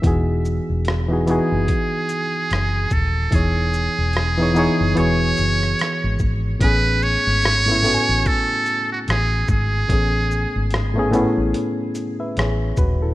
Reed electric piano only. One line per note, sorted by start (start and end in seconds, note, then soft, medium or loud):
0.02 0.89 E3 medium
0.02 0.90 B3 medium
0.02 0.90 D#4 medium
0.02 0.91 F#4 medium
0.07 0.92 G#4 medium
1.08 1.23 E3 medium
1.08 1.24 B3 medium
1.08 1.24 D#4 medium
1.08 1.25 F#4 medium
1.13 1.26 G#4 medium
1.26 2.66 E3 medium
1.26 2.67 B3 medium
1.26 2.68 D#4 medium
1.26 2.68 F#4 medium
1.31 2.69 G#4 medium
3.31 4.18 E3 medium
3.31 4.18 B3 medium
3.31 4.19 D#4 medium
3.31 4.20 G#4 medium
3.35 4.20 C#5 medium
4.38 4.52 E3 medium
4.38 4.53 B3 medium
4.38 4.53 D#4 medium
4.38 4.54 G#4 medium
4.42 4.55 C#5 medium
4.54 4.94 E3 medium
4.54 4.95 B3 medium
4.54 4.97 D#4 medium
4.54 4.98 G#4 medium
4.59 4.98 C#5 medium
4.95 6.36 E3 medium
4.95 6.36 B3 medium
4.95 6.37 F#4 medium
4.95 6.37 G#4 medium
5.00 6.38 C#5 medium
6.59 7.47 A2 medium
6.59 7.47 A3 medium
6.59 7.48 B3 medium
6.59 7.48 C#4 medium
6.64 7.49 G#4 medium
7.67 7.81 A2 medium
7.67 7.82 A3 medium
7.67 7.82 B3 medium
7.67 7.83 C#4 medium
7.72 7.84 E4 medium
7.83 9.23 A2 medium
7.83 9.24 A3 medium
7.83 9.25 B3 medium
7.83 9.25 C#4 medium
7.88 7.94 F#4 medium
7.94 9.29 G#5 medium
9.88 10.75 A2 medium
9.88 10.76 A3 medium
9.88 10.77 B3 medium
9.88 10.77 C#4 medium
9.93 10.78 G#4 medium
10.94 11.09 A2 medium
10.94 11.10 A3 medium
10.94 11.11 B3 medium
10.94 11.11 C#4 medium
10.99 11.12 G#4 loud
11.11 12.52 A2 medium
11.11 12.52 A3 medium
11.11 12.53 B3 medium
11.11 12.54 C#4 medium
11.16 11.97 E4 medium
12.20 12.36 B4 medium
12.20 12.36 E5 medium
12.38 12.77 G#4 medium
12.38 12.76 C#5 medium
12.78 13.01 F#4 medium
12.78 13.01 B4 medium
13.02 13.14 E4 medium
13.02 13.14 A4 medium